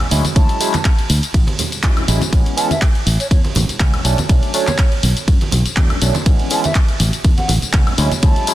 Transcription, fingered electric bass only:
0.11 D2
0.36 D2
1.10 D2
1.34 A1
2.08 A1
2.33 A1
3.06 A1
3.31 E2
3.56 A1
3.80 C#2
4.05 B1
4.29 B1
5.03 B1
5.28 F#2
5.52 B1
5.77 E2
6.02 B1
6.26 A1
7.00 A1
7.24 E2
7.49 A1
7.62 muted fingered electric bass stroke
7.74 C#2
7.98 D2
8.23 D2

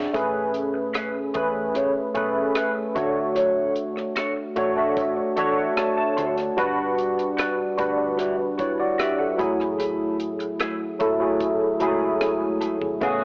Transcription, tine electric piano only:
Already playing: D4 F#4 G#4 D5 E5
0.13 A3 C#4 G#4 B4
1.35 A3 C#4 G#4 B4
2.15 A3 C#4 G#4 B4
2.95 A3 D4 F#4 C#5
4.56 A3 D4 F#4 C#5
4.76 A3 D4 F#4 E5
5.36 A3 D4 F#4 C#5 E5
5.57 F#5
5.77 A5
5.98 A5
6.57 G3 D4 F#4 B4
7.77 G3 D4 F#4 B4
8.60 E4 C#5
8.80 F#4 D5
8.99 G4 E5
9.19 A4 F#5
9.38 F#3 A3 E4 G#4
10.99 F#3 A3 E4 A4
11.19 F#3 A3 E4 G#4
11.80 F#3 G#3 E4 G#4
11.88 A3
13.01 C#3 A3 B3 G#4

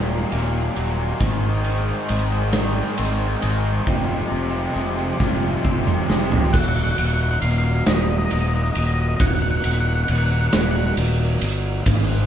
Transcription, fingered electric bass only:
Already playing: D#1
0.32 D#1
0.77 D#1
1.20 G#1
2.10 G#1
2.99 G#1
3.43 G#1
3.87 F1
4.32 F1
4.76 F1
5.20 F1
5.65 F1
6.09 F1
6.54 D#1
6.98 D#1
7.42 D#1
7.87 D#1
8.32 D#1
8.76 D#1
9.20 D#1
9.65 D#1
10.09 D#1
10.54 D#1
10.97 D#1
11.42 G1
11.86 G#1

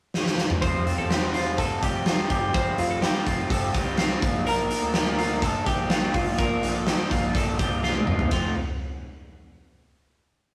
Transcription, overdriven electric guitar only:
0.61 F3 G3 C4 F4
0.85 G3 C4 F4
1.10 F3 G3 C4 F4
1.33 G3 C4 F4
1.57 F3 G3 C4 F4
1.81 G3 C4 F4
2.05 F3 G3 C4 F4
2.29 G3 C4 F4
2.54 F3 G3 C4 F4
2.77 G3 C4 F4
3.01 F3 G3 C4 F4
3.26 G3 C4 F4
3.50 F3 G3 C4 F4
3.74 G3 C4 F4
3.98 F3 G3 C4 F4
4.22 A#3 D4 F4
4.45 A#2 F3 A#3 D4 F4
4.69 A#3 D4 F4
4.93 F3 A#3 D4 F4
5.18 A#3 D4 F4
5.42 A#2 F3 A#3 D4 F4
5.66 A#3 D4 F4
5.90 F3 A#3 D4 F4
6.13 A#3 D4 F4
6.38 A#2 F3 A#3 D4 F4
6.62 A#3 D4 F4
6.85 F3 A#3 D4 F4
7.09 A#3 D4 F4
7.34 A#2 F3 A#3 D4 F4
7.58 A#3 D4 F4
7.82 F3 A#3 D4 F4
8.06 A#3 D4 F4
8.31 F3 A3 C4 F4

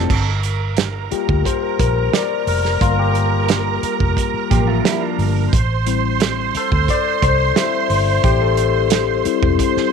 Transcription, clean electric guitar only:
Already playing: C4 A4
4.50 A#3 G4
4.67 A3 F4
4.84 G3 E4
5.01 F3 D4

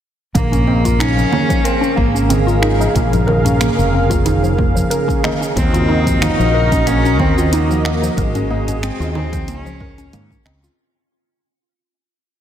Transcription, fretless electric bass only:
0.35 A#1
1.98 G#1
2.95 A#1
3.79 F1
5.56 D#2
6.39 A#1
7.19 D#2
8.17 G#1
9.00 D#2
9.48 C#2
10.13 G#2
10.45 C#2

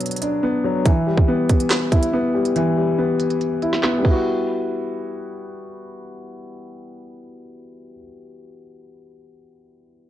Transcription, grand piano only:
Already playing: B2 F#3 B3 D4
0.22 D4
0.43 B3
0.64 F#3
0.86 E3
1.07 G3
1.28 B3
1.92 E4
2.13 B3
2.35 G3
2.56 E3
2.77 G3
2.98 B3
3.62 E4
3.84 B3
3.99 G3
4.03 B3
4.07 E4
4.11 F#4

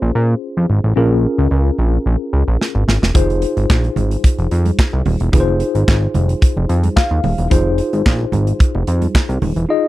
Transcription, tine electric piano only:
Already playing: C#4 F4 G#4 C5
0.96 C#4 F4 G#4 A#4
3.14 D#4 F4 G#4 C5
5.32 D#4 F4 G#4 B4
5.40 C5
6.96 F5
7.50 D#4 F4 G#4 C5
9.69 D#4 F4 G#4 D#5

